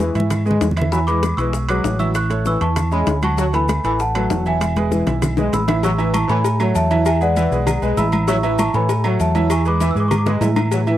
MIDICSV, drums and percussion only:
0, 0, Header, 1, 2, 480
1, 0, Start_track
1, 0, Key_signature, 3, "major"
1, 0, Tempo, 306279
1, 1440, Time_signature, 4, 2, 24, 8
1, 17203, End_track
2, 0, Start_track
2, 0, Title_t, "Drums"
2, 0, Note_on_c, 9, 60, 61
2, 6, Note_on_c, 9, 70, 70
2, 156, Note_off_c, 9, 60, 0
2, 162, Note_off_c, 9, 70, 0
2, 236, Note_on_c, 9, 70, 29
2, 240, Note_on_c, 9, 65, 64
2, 241, Note_on_c, 9, 60, 35
2, 312, Note_on_c, 9, 63, 93
2, 393, Note_off_c, 9, 70, 0
2, 397, Note_off_c, 9, 65, 0
2, 398, Note_off_c, 9, 60, 0
2, 469, Note_off_c, 9, 63, 0
2, 476, Note_on_c, 9, 64, 79
2, 477, Note_on_c, 9, 75, 65
2, 478, Note_on_c, 9, 60, 68
2, 480, Note_on_c, 9, 65, 89
2, 481, Note_on_c, 9, 70, 69
2, 633, Note_off_c, 9, 64, 0
2, 634, Note_off_c, 9, 60, 0
2, 634, Note_off_c, 9, 75, 0
2, 637, Note_off_c, 9, 65, 0
2, 638, Note_off_c, 9, 70, 0
2, 715, Note_on_c, 9, 60, 34
2, 724, Note_on_c, 9, 70, 27
2, 795, Note_on_c, 9, 64, 79
2, 872, Note_off_c, 9, 60, 0
2, 880, Note_off_c, 9, 70, 0
2, 951, Note_off_c, 9, 64, 0
2, 957, Note_on_c, 9, 65, 66
2, 957, Note_on_c, 9, 66, 70
2, 958, Note_on_c, 9, 60, 76
2, 958, Note_on_c, 9, 61, 89
2, 962, Note_on_c, 9, 70, 68
2, 1114, Note_off_c, 9, 60, 0
2, 1114, Note_off_c, 9, 61, 0
2, 1114, Note_off_c, 9, 65, 0
2, 1114, Note_off_c, 9, 66, 0
2, 1118, Note_on_c, 9, 64, 83
2, 1119, Note_off_c, 9, 70, 0
2, 1200, Note_on_c, 9, 75, 69
2, 1207, Note_on_c, 9, 65, 83
2, 1207, Note_on_c, 9, 70, 31
2, 1275, Note_off_c, 9, 64, 0
2, 1277, Note_on_c, 9, 64, 99
2, 1356, Note_off_c, 9, 75, 0
2, 1363, Note_off_c, 9, 65, 0
2, 1364, Note_off_c, 9, 70, 0
2, 1434, Note_off_c, 9, 64, 0
2, 1443, Note_on_c, 9, 60, 73
2, 1445, Note_on_c, 9, 63, 32
2, 1450, Note_on_c, 9, 70, 75
2, 1599, Note_off_c, 9, 60, 0
2, 1602, Note_off_c, 9, 63, 0
2, 1607, Note_off_c, 9, 70, 0
2, 1686, Note_on_c, 9, 63, 34
2, 1689, Note_on_c, 9, 65, 61
2, 1689, Note_on_c, 9, 70, 29
2, 1842, Note_off_c, 9, 63, 0
2, 1846, Note_off_c, 9, 65, 0
2, 1846, Note_off_c, 9, 70, 0
2, 1925, Note_on_c, 9, 63, 90
2, 1925, Note_on_c, 9, 65, 81
2, 1927, Note_on_c, 9, 60, 58
2, 1927, Note_on_c, 9, 75, 61
2, 1932, Note_on_c, 9, 70, 70
2, 2082, Note_off_c, 9, 63, 0
2, 2082, Note_off_c, 9, 65, 0
2, 2083, Note_off_c, 9, 75, 0
2, 2084, Note_off_c, 9, 60, 0
2, 2088, Note_off_c, 9, 70, 0
2, 2167, Note_on_c, 9, 65, 66
2, 2167, Note_on_c, 9, 70, 32
2, 2170, Note_on_c, 9, 63, 35
2, 2323, Note_off_c, 9, 65, 0
2, 2324, Note_off_c, 9, 70, 0
2, 2327, Note_off_c, 9, 63, 0
2, 2402, Note_on_c, 9, 60, 68
2, 2413, Note_on_c, 9, 70, 75
2, 2414, Note_on_c, 9, 63, 34
2, 2559, Note_off_c, 9, 60, 0
2, 2570, Note_off_c, 9, 70, 0
2, 2571, Note_off_c, 9, 63, 0
2, 2642, Note_on_c, 9, 65, 92
2, 2651, Note_on_c, 9, 75, 70
2, 2652, Note_on_c, 9, 70, 27
2, 2653, Note_on_c, 9, 63, 35
2, 2798, Note_off_c, 9, 65, 0
2, 2808, Note_off_c, 9, 70, 0
2, 2808, Note_off_c, 9, 75, 0
2, 2810, Note_off_c, 9, 63, 0
2, 2888, Note_on_c, 9, 60, 80
2, 2888, Note_on_c, 9, 61, 81
2, 2890, Note_on_c, 9, 63, 31
2, 2894, Note_on_c, 9, 70, 68
2, 3045, Note_off_c, 9, 60, 0
2, 3045, Note_off_c, 9, 61, 0
2, 3047, Note_off_c, 9, 63, 0
2, 3051, Note_off_c, 9, 70, 0
2, 3126, Note_on_c, 9, 70, 31
2, 3132, Note_on_c, 9, 63, 81
2, 3283, Note_off_c, 9, 70, 0
2, 3288, Note_off_c, 9, 63, 0
2, 3363, Note_on_c, 9, 70, 79
2, 3366, Note_on_c, 9, 75, 60
2, 3369, Note_on_c, 9, 60, 69
2, 3371, Note_on_c, 9, 65, 83
2, 3520, Note_off_c, 9, 70, 0
2, 3523, Note_off_c, 9, 75, 0
2, 3525, Note_off_c, 9, 60, 0
2, 3528, Note_off_c, 9, 65, 0
2, 3611, Note_on_c, 9, 60, 35
2, 3611, Note_on_c, 9, 70, 27
2, 3612, Note_on_c, 9, 63, 33
2, 3613, Note_on_c, 9, 65, 62
2, 3767, Note_off_c, 9, 70, 0
2, 3768, Note_off_c, 9, 60, 0
2, 3768, Note_off_c, 9, 63, 0
2, 3770, Note_off_c, 9, 65, 0
2, 3846, Note_on_c, 9, 70, 68
2, 3850, Note_on_c, 9, 63, 63
2, 3851, Note_on_c, 9, 60, 54
2, 4003, Note_off_c, 9, 70, 0
2, 4006, Note_off_c, 9, 63, 0
2, 4008, Note_off_c, 9, 60, 0
2, 4090, Note_on_c, 9, 60, 37
2, 4092, Note_on_c, 9, 65, 71
2, 4093, Note_on_c, 9, 63, 37
2, 4095, Note_on_c, 9, 70, 32
2, 4247, Note_off_c, 9, 60, 0
2, 4249, Note_off_c, 9, 63, 0
2, 4249, Note_off_c, 9, 65, 0
2, 4252, Note_off_c, 9, 70, 0
2, 4328, Note_on_c, 9, 65, 91
2, 4330, Note_on_c, 9, 60, 71
2, 4333, Note_on_c, 9, 70, 77
2, 4336, Note_on_c, 9, 75, 63
2, 4338, Note_on_c, 9, 63, 34
2, 4338, Note_on_c, 9, 64, 82
2, 4485, Note_off_c, 9, 65, 0
2, 4486, Note_off_c, 9, 60, 0
2, 4490, Note_off_c, 9, 70, 0
2, 4493, Note_off_c, 9, 75, 0
2, 4495, Note_off_c, 9, 63, 0
2, 4495, Note_off_c, 9, 64, 0
2, 4570, Note_on_c, 9, 70, 25
2, 4572, Note_on_c, 9, 60, 37
2, 4576, Note_on_c, 9, 63, 35
2, 4727, Note_off_c, 9, 70, 0
2, 4728, Note_off_c, 9, 60, 0
2, 4732, Note_off_c, 9, 63, 0
2, 4807, Note_on_c, 9, 70, 63
2, 4810, Note_on_c, 9, 60, 76
2, 4810, Note_on_c, 9, 61, 90
2, 4813, Note_on_c, 9, 63, 74
2, 4817, Note_on_c, 9, 65, 74
2, 4963, Note_off_c, 9, 70, 0
2, 4966, Note_off_c, 9, 60, 0
2, 4966, Note_off_c, 9, 61, 0
2, 4970, Note_off_c, 9, 63, 0
2, 4974, Note_off_c, 9, 65, 0
2, 5053, Note_on_c, 9, 70, 32
2, 5056, Note_on_c, 9, 63, 88
2, 5058, Note_on_c, 9, 65, 83
2, 5058, Note_on_c, 9, 75, 74
2, 5210, Note_off_c, 9, 70, 0
2, 5212, Note_off_c, 9, 63, 0
2, 5215, Note_off_c, 9, 65, 0
2, 5215, Note_off_c, 9, 75, 0
2, 5297, Note_on_c, 9, 70, 79
2, 5301, Note_on_c, 9, 60, 72
2, 5453, Note_off_c, 9, 70, 0
2, 5458, Note_off_c, 9, 60, 0
2, 5539, Note_on_c, 9, 70, 28
2, 5542, Note_on_c, 9, 63, 36
2, 5546, Note_on_c, 9, 65, 71
2, 5696, Note_off_c, 9, 70, 0
2, 5699, Note_off_c, 9, 63, 0
2, 5703, Note_off_c, 9, 65, 0
2, 5776, Note_on_c, 9, 70, 69
2, 5780, Note_on_c, 9, 75, 60
2, 5784, Note_on_c, 9, 60, 61
2, 5787, Note_on_c, 9, 63, 89
2, 5788, Note_on_c, 9, 65, 83
2, 5933, Note_off_c, 9, 70, 0
2, 5937, Note_off_c, 9, 75, 0
2, 5941, Note_off_c, 9, 60, 0
2, 5943, Note_off_c, 9, 63, 0
2, 5945, Note_off_c, 9, 65, 0
2, 6022, Note_on_c, 9, 70, 32
2, 6027, Note_on_c, 9, 63, 35
2, 6028, Note_on_c, 9, 65, 65
2, 6179, Note_off_c, 9, 70, 0
2, 6184, Note_off_c, 9, 63, 0
2, 6185, Note_off_c, 9, 65, 0
2, 6263, Note_on_c, 9, 70, 74
2, 6268, Note_on_c, 9, 60, 64
2, 6269, Note_on_c, 9, 63, 35
2, 6420, Note_off_c, 9, 70, 0
2, 6424, Note_off_c, 9, 60, 0
2, 6425, Note_off_c, 9, 63, 0
2, 6502, Note_on_c, 9, 63, 30
2, 6505, Note_on_c, 9, 70, 29
2, 6505, Note_on_c, 9, 75, 66
2, 6508, Note_on_c, 9, 65, 94
2, 6659, Note_off_c, 9, 63, 0
2, 6661, Note_off_c, 9, 70, 0
2, 6662, Note_off_c, 9, 75, 0
2, 6665, Note_off_c, 9, 65, 0
2, 6743, Note_on_c, 9, 60, 76
2, 6743, Note_on_c, 9, 61, 88
2, 6746, Note_on_c, 9, 70, 72
2, 6750, Note_on_c, 9, 63, 32
2, 6751, Note_on_c, 9, 66, 66
2, 6900, Note_off_c, 9, 60, 0
2, 6900, Note_off_c, 9, 61, 0
2, 6902, Note_off_c, 9, 70, 0
2, 6907, Note_off_c, 9, 63, 0
2, 6908, Note_off_c, 9, 66, 0
2, 6985, Note_on_c, 9, 70, 28
2, 7142, Note_off_c, 9, 70, 0
2, 7221, Note_on_c, 9, 63, 85
2, 7226, Note_on_c, 9, 75, 64
2, 7228, Note_on_c, 9, 60, 70
2, 7229, Note_on_c, 9, 65, 94
2, 7230, Note_on_c, 9, 70, 80
2, 7377, Note_off_c, 9, 63, 0
2, 7383, Note_off_c, 9, 75, 0
2, 7384, Note_off_c, 9, 60, 0
2, 7386, Note_off_c, 9, 65, 0
2, 7387, Note_off_c, 9, 70, 0
2, 7464, Note_on_c, 9, 60, 37
2, 7465, Note_on_c, 9, 63, 90
2, 7471, Note_on_c, 9, 70, 28
2, 7472, Note_on_c, 9, 65, 68
2, 7621, Note_off_c, 9, 60, 0
2, 7622, Note_off_c, 9, 63, 0
2, 7628, Note_off_c, 9, 65, 0
2, 7628, Note_off_c, 9, 70, 0
2, 7706, Note_on_c, 9, 60, 57
2, 7708, Note_on_c, 9, 70, 69
2, 7712, Note_on_c, 9, 63, 90
2, 7862, Note_off_c, 9, 60, 0
2, 7865, Note_off_c, 9, 70, 0
2, 7869, Note_off_c, 9, 63, 0
2, 7941, Note_on_c, 9, 60, 73
2, 7944, Note_on_c, 9, 64, 74
2, 7948, Note_on_c, 9, 70, 32
2, 7949, Note_on_c, 9, 65, 67
2, 8097, Note_off_c, 9, 60, 0
2, 8101, Note_off_c, 9, 64, 0
2, 8105, Note_off_c, 9, 65, 0
2, 8105, Note_off_c, 9, 70, 0
2, 8183, Note_on_c, 9, 60, 80
2, 8184, Note_on_c, 9, 65, 85
2, 8186, Note_on_c, 9, 75, 68
2, 8187, Note_on_c, 9, 70, 78
2, 8188, Note_on_c, 9, 64, 100
2, 8340, Note_off_c, 9, 60, 0
2, 8340, Note_off_c, 9, 65, 0
2, 8343, Note_off_c, 9, 75, 0
2, 8344, Note_off_c, 9, 70, 0
2, 8345, Note_off_c, 9, 64, 0
2, 8416, Note_on_c, 9, 61, 98
2, 8426, Note_on_c, 9, 64, 69
2, 8427, Note_on_c, 9, 70, 27
2, 8573, Note_off_c, 9, 61, 0
2, 8583, Note_off_c, 9, 64, 0
2, 8584, Note_off_c, 9, 70, 0
2, 8667, Note_on_c, 9, 65, 72
2, 8668, Note_on_c, 9, 70, 67
2, 8676, Note_on_c, 9, 64, 75
2, 8824, Note_off_c, 9, 65, 0
2, 8824, Note_off_c, 9, 70, 0
2, 8833, Note_off_c, 9, 64, 0
2, 8899, Note_on_c, 9, 61, 103
2, 8907, Note_on_c, 9, 65, 84
2, 8909, Note_on_c, 9, 70, 32
2, 8911, Note_on_c, 9, 64, 83
2, 8914, Note_on_c, 9, 75, 68
2, 9056, Note_off_c, 9, 61, 0
2, 9063, Note_off_c, 9, 65, 0
2, 9066, Note_off_c, 9, 70, 0
2, 9068, Note_off_c, 9, 64, 0
2, 9071, Note_off_c, 9, 75, 0
2, 9140, Note_on_c, 9, 56, 113
2, 9144, Note_on_c, 9, 68, 87
2, 9147, Note_on_c, 9, 70, 82
2, 9153, Note_on_c, 9, 63, 33
2, 9297, Note_off_c, 9, 56, 0
2, 9300, Note_off_c, 9, 68, 0
2, 9303, Note_off_c, 9, 70, 0
2, 9309, Note_off_c, 9, 63, 0
2, 9379, Note_on_c, 9, 68, 82
2, 9385, Note_on_c, 9, 70, 29
2, 9388, Note_on_c, 9, 63, 33
2, 9536, Note_off_c, 9, 68, 0
2, 9542, Note_off_c, 9, 70, 0
2, 9545, Note_off_c, 9, 63, 0
2, 9618, Note_on_c, 9, 68, 110
2, 9619, Note_on_c, 9, 56, 75
2, 9625, Note_on_c, 9, 75, 64
2, 9626, Note_on_c, 9, 70, 71
2, 9627, Note_on_c, 9, 63, 94
2, 9775, Note_off_c, 9, 68, 0
2, 9776, Note_off_c, 9, 56, 0
2, 9782, Note_off_c, 9, 75, 0
2, 9783, Note_off_c, 9, 63, 0
2, 9783, Note_off_c, 9, 70, 0
2, 9864, Note_on_c, 9, 56, 76
2, 9865, Note_on_c, 9, 63, 36
2, 9866, Note_on_c, 9, 70, 34
2, 10021, Note_off_c, 9, 56, 0
2, 10022, Note_off_c, 9, 63, 0
2, 10023, Note_off_c, 9, 70, 0
2, 10097, Note_on_c, 9, 63, 35
2, 10099, Note_on_c, 9, 56, 108
2, 10102, Note_on_c, 9, 68, 90
2, 10106, Note_on_c, 9, 70, 80
2, 10253, Note_off_c, 9, 63, 0
2, 10256, Note_off_c, 9, 56, 0
2, 10259, Note_off_c, 9, 68, 0
2, 10263, Note_off_c, 9, 70, 0
2, 10340, Note_on_c, 9, 75, 68
2, 10342, Note_on_c, 9, 63, 33
2, 10342, Note_on_c, 9, 70, 32
2, 10347, Note_on_c, 9, 68, 109
2, 10497, Note_off_c, 9, 75, 0
2, 10498, Note_off_c, 9, 63, 0
2, 10499, Note_off_c, 9, 70, 0
2, 10504, Note_off_c, 9, 68, 0
2, 10581, Note_on_c, 9, 63, 35
2, 10582, Note_on_c, 9, 70, 80
2, 10584, Note_on_c, 9, 56, 83
2, 10738, Note_off_c, 9, 63, 0
2, 10739, Note_off_c, 9, 70, 0
2, 10741, Note_off_c, 9, 56, 0
2, 10821, Note_on_c, 9, 70, 31
2, 10827, Note_on_c, 9, 68, 71
2, 10828, Note_on_c, 9, 56, 69
2, 10978, Note_off_c, 9, 70, 0
2, 10984, Note_off_c, 9, 56, 0
2, 10984, Note_off_c, 9, 68, 0
2, 11059, Note_on_c, 9, 70, 86
2, 11062, Note_on_c, 9, 75, 66
2, 11065, Note_on_c, 9, 68, 108
2, 11066, Note_on_c, 9, 56, 113
2, 11066, Note_on_c, 9, 63, 33
2, 11216, Note_off_c, 9, 70, 0
2, 11218, Note_off_c, 9, 75, 0
2, 11222, Note_off_c, 9, 63, 0
2, 11222, Note_off_c, 9, 68, 0
2, 11223, Note_off_c, 9, 56, 0
2, 11298, Note_on_c, 9, 63, 39
2, 11301, Note_on_c, 9, 70, 28
2, 11455, Note_off_c, 9, 63, 0
2, 11458, Note_off_c, 9, 70, 0
2, 11539, Note_on_c, 9, 70, 70
2, 11541, Note_on_c, 9, 56, 71
2, 11546, Note_on_c, 9, 63, 65
2, 11546, Note_on_c, 9, 68, 72
2, 11696, Note_off_c, 9, 70, 0
2, 11697, Note_off_c, 9, 56, 0
2, 11703, Note_off_c, 9, 63, 0
2, 11703, Note_off_c, 9, 68, 0
2, 11785, Note_on_c, 9, 70, 34
2, 11790, Note_on_c, 9, 63, 41
2, 11942, Note_off_c, 9, 70, 0
2, 11947, Note_off_c, 9, 63, 0
2, 12016, Note_on_c, 9, 56, 109
2, 12017, Note_on_c, 9, 68, 106
2, 12019, Note_on_c, 9, 75, 67
2, 12023, Note_on_c, 9, 70, 78
2, 12024, Note_on_c, 9, 63, 35
2, 12024, Note_on_c, 9, 64, 91
2, 12172, Note_off_c, 9, 56, 0
2, 12174, Note_off_c, 9, 68, 0
2, 12176, Note_off_c, 9, 75, 0
2, 12180, Note_off_c, 9, 70, 0
2, 12181, Note_off_c, 9, 63, 0
2, 12181, Note_off_c, 9, 64, 0
2, 12261, Note_on_c, 9, 70, 32
2, 12263, Note_on_c, 9, 63, 32
2, 12418, Note_off_c, 9, 70, 0
2, 12420, Note_off_c, 9, 63, 0
2, 12495, Note_on_c, 9, 63, 83
2, 12497, Note_on_c, 9, 56, 75
2, 12498, Note_on_c, 9, 70, 75
2, 12499, Note_on_c, 9, 68, 89
2, 12652, Note_off_c, 9, 63, 0
2, 12654, Note_off_c, 9, 56, 0
2, 12655, Note_off_c, 9, 70, 0
2, 12656, Note_off_c, 9, 68, 0
2, 12729, Note_on_c, 9, 56, 68
2, 12734, Note_on_c, 9, 70, 31
2, 12737, Note_on_c, 9, 75, 72
2, 12740, Note_on_c, 9, 68, 103
2, 12746, Note_on_c, 9, 63, 94
2, 12885, Note_off_c, 9, 56, 0
2, 12891, Note_off_c, 9, 70, 0
2, 12894, Note_off_c, 9, 75, 0
2, 12897, Note_off_c, 9, 68, 0
2, 12903, Note_off_c, 9, 63, 0
2, 12971, Note_on_c, 9, 56, 106
2, 12974, Note_on_c, 9, 70, 84
2, 12981, Note_on_c, 9, 68, 82
2, 12988, Note_on_c, 9, 63, 33
2, 13128, Note_off_c, 9, 56, 0
2, 13130, Note_off_c, 9, 70, 0
2, 13137, Note_off_c, 9, 68, 0
2, 13144, Note_off_c, 9, 63, 0
2, 13216, Note_on_c, 9, 68, 88
2, 13217, Note_on_c, 9, 70, 29
2, 13232, Note_on_c, 9, 63, 37
2, 13372, Note_off_c, 9, 68, 0
2, 13374, Note_off_c, 9, 70, 0
2, 13388, Note_off_c, 9, 63, 0
2, 13456, Note_on_c, 9, 70, 75
2, 13458, Note_on_c, 9, 68, 109
2, 13460, Note_on_c, 9, 56, 75
2, 13463, Note_on_c, 9, 63, 101
2, 13463, Note_on_c, 9, 75, 62
2, 13612, Note_off_c, 9, 70, 0
2, 13614, Note_off_c, 9, 68, 0
2, 13616, Note_off_c, 9, 56, 0
2, 13620, Note_off_c, 9, 63, 0
2, 13620, Note_off_c, 9, 75, 0
2, 13695, Note_on_c, 9, 70, 34
2, 13702, Note_on_c, 9, 56, 68
2, 13704, Note_on_c, 9, 63, 36
2, 13852, Note_off_c, 9, 70, 0
2, 13858, Note_off_c, 9, 56, 0
2, 13861, Note_off_c, 9, 63, 0
2, 13933, Note_on_c, 9, 56, 101
2, 13935, Note_on_c, 9, 68, 92
2, 13936, Note_on_c, 9, 70, 83
2, 13947, Note_on_c, 9, 63, 38
2, 14090, Note_off_c, 9, 56, 0
2, 14092, Note_off_c, 9, 68, 0
2, 14093, Note_off_c, 9, 70, 0
2, 14104, Note_off_c, 9, 63, 0
2, 14168, Note_on_c, 9, 68, 115
2, 14176, Note_on_c, 9, 70, 30
2, 14177, Note_on_c, 9, 75, 73
2, 14185, Note_on_c, 9, 63, 34
2, 14325, Note_off_c, 9, 68, 0
2, 14333, Note_off_c, 9, 70, 0
2, 14333, Note_off_c, 9, 75, 0
2, 14342, Note_off_c, 9, 63, 0
2, 14415, Note_on_c, 9, 56, 74
2, 14419, Note_on_c, 9, 70, 69
2, 14424, Note_on_c, 9, 63, 35
2, 14571, Note_off_c, 9, 56, 0
2, 14575, Note_off_c, 9, 70, 0
2, 14581, Note_off_c, 9, 63, 0
2, 14651, Note_on_c, 9, 56, 65
2, 14652, Note_on_c, 9, 68, 79
2, 14660, Note_on_c, 9, 63, 79
2, 14661, Note_on_c, 9, 70, 34
2, 14808, Note_off_c, 9, 56, 0
2, 14809, Note_off_c, 9, 68, 0
2, 14817, Note_off_c, 9, 63, 0
2, 14818, Note_off_c, 9, 70, 0
2, 14886, Note_on_c, 9, 56, 113
2, 14888, Note_on_c, 9, 68, 103
2, 14892, Note_on_c, 9, 75, 71
2, 14893, Note_on_c, 9, 70, 87
2, 14902, Note_on_c, 9, 63, 32
2, 15043, Note_off_c, 9, 56, 0
2, 15045, Note_off_c, 9, 68, 0
2, 15049, Note_off_c, 9, 75, 0
2, 15050, Note_off_c, 9, 70, 0
2, 15059, Note_off_c, 9, 63, 0
2, 15127, Note_on_c, 9, 70, 30
2, 15136, Note_on_c, 9, 63, 38
2, 15284, Note_off_c, 9, 70, 0
2, 15293, Note_off_c, 9, 63, 0
2, 15365, Note_on_c, 9, 56, 75
2, 15367, Note_on_c, 9, 68, 70
2, 15369, Note_on_c, 9, 70, 73
2, 15374, Note_on_c, 9, 63, 64
2, 15522, Note_off_c, 9, 56, 0
2, 15523, Note_off_c, 9, 68, 0
2, 15526, Note_off_c, 9, 70, 0
2, 15530, Note_off_c, 9, 63, 0
2, 15611, Note_on_c, 9, 63, 34
2, 15614, Note_on_c, 9, 70, 32
2, 15767, Note_off_c, 9, 63, 0
2, 15770, Note_off_c, 9, 70, 0
2, 15843, Note_on_c, 9, 75, 60
2, 15844, Note_on_c, 9, 68, 111
2, 15847, Note_on_c, 9, 56, 111
2, 15847, Note_on_c, 9, 63, 36
2, 15847, Note_on_c, 9, 64, 95
2, 15847, Note_on_c, 9, 70, 82
2, 15999, Note_off_c, 9, 75, 0
2, 16001, Note_off_c, 9, 68, 0
2, 16003, Note_off_c, 9, 56, 0
2, 16004, Note_off_c, 9, 63, 0
2, 16004, Note_off_c, 9, 64, 0
2, 16004, Note_off_c, 9, 70, 0
2, 16083, Note_on_c, 9, 63, 31
2, 16083, Note_on_c, 9, 64, 66
2, 16087, Note_on_c, 9, 70, 27
2, 16089, Note_on_c, 9, 60, 69
2, 16240, Note_off_c, 9, 63, 0
2, 16240, Note_off_c, 9, 64, 0
2, 16243, Note_off_c, 9, 70, 0
2, 16246, Note_off_c, 9, 60, 0
2, 16313, Note_on_c, 9, 63, 84
2, 16318, Note_on_c, 9, 66, 72
2, 16318, Note_on_c, 9, 68, 91
2, 16326, Note_on_c, 9, 70, 79
2, 16327, Note_on_c, 9, 56, 77
2, 16470, Note_off_c, 9, 63, 0
2, 16475, Note_off_c, 9, 66, 0
2, 16475, Note_off_c, 9, 68, 0
2, 16483, Note_off_c, 9, 70, 0
2, 16484, Note_off_c, 9, 56, 0
2, 16553, Note_on_c, 9, 63, 88
2, 16553, Note_on_c, 9, 68, 100
2, 16555, Note_on_c, 9, 75, 73
2, 16557, Note_on_c, 9, 70, 32
2, 16558, Note_on_c, 9, 56, 66
2, 16558, Note_on_c, 9, 61, 95
2, 16709, Note_off_c, 9, 63, 0
2, 16710, Note_off_c, 9, 68, 0
2, 16712, Note_off_c, 9, 75, 0
2, 16714, Note_off_c, 9, 56, 0
2, 16714, Note_off_c, 9, 61, 0
2, 16714, Note_off_c, 9, 70, 0
2, 16789, Note_on_c, 9, 63, 35
2, 16793, Note_on_c, 9, 56, 108
2, 16794, Note_on_c, 9, 68, 89
2, 16796, Note_on_c, 9, 70, 88
2, 16946, Note_off_c, 9, 63, 0
2, 16949, Note_off_c, 9, 56, 0
2, 16951, Note_off_c, 9, 68, 0
2, 16953, Note_off_c, 9, 70, 0
2, 17025, Note_on_c, 9, 63, 35
2, 17036, Note_on_c, 9, 70, 26
2, 17037, Note_on_c, 9, 68, 81
2, 17182, Note_off_c, 9, 63, 0
2, 17192, Note_off_c, 9, 70, 0
2, 17193, Note_off_c, 9, 68, 0
2, 17203, End_track
0, 0, End_of_file